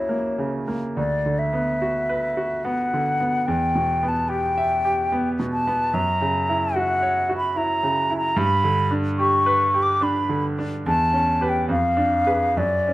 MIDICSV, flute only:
0, 0, Header, 1, 2, 480
1, 0, Start_track
1, 0, Key_signature, 2, "minor"
1, 0, Tempo, 859599
1, 544, Time_signature, 3, 2, 24, 8
1, 1015, Tempo, 819672
1, 5335, Tempo, 834492
1, 6775, Tempo, 886263
1, 7444, End_track
2, 0, Start_track
2, 0, Title_t, "Flute"
2, 0, Program_c, 0, 73
2, 0, Note_on_c, 0, 73, 45
2, 297, Note_off_c, 0, 73, 0
2, 542, Note_on_c, 0, 74, 54
2, 776, Note_on_c, 0, 76, 57
2, 784, Note_off_c, 0, 74, 0
2, 1499, Note_on_c, 0, 78, 60
2, 1507, Note_off_c, 0, 76, 0
2, 1980, Note_on_c, 0, 79, 65
2, 1989, Note_off_c, 0, 78, 0
2, 2342, Note_on_c, 0, 81, 56
2, 2351, Note_off_c, 0, 79, 0
2, 2461, Note_on_c, 0, 79, 70
2, 2470, Note_off_c, 0, 81, 0
2, 3046, Note_off_c, 0, 79, 0
2, 3187, Note_on_c, 0, 81, 71
2, 3431, Note_on_c, 0, 82, 63
2, 3440, Note_off_c, 0, 81, 0
2, 3906, Note_on_c, 0, 78, 72
2, 3915, Note_off_c, 0, 82, 0
2, 4262, Note_off_c, 0, 78, 0
2, 4271, Note_on_c, 0, 83, 64
2, 4385, Note_on_c, 0, 82, 65
2, 4394, Note_off_c, 0, 83, 0
2, 4735, Note_off_c, 0, 82, 0
2, 4739, Note_on_c, 0, 82, 70
2, 4857, Note_on_c, 0, 83, 82
2, 4866, Note_off_c, 0, 82, 0
2, 5178, Note_off_c, 0, 83, 0
2, 5333, Note_on_c, 0, 85, 83
2, 5698, Note_on_c, 0, 86, 71
2, 5706, Note_off_c, 0, 85, 0
2, 5817, Note_on_c, 0, 83, 65
2, 5825, Note_off_c, 0, 86, 0
2, 6056, Note_off_c, 0, 83, 0
2, 6299, Note_on_c, 0, 81, 82
2, 6654, Note_on_c, 0, 79, 62
2, 6663, Note_off_c, 0, 81, 0
2, 6773, Note_off_c, 0, 79, 0
2, 6776, Note_on_c, 0, 77, 69
2, 7252, Note_on_c, 0, 74, 67
2, 7260, Note_off_c, 0, 77, 0
2, 7444, Note_off_c, 0, 74, 0
2, 7444, End_track
0, 0, End_of_file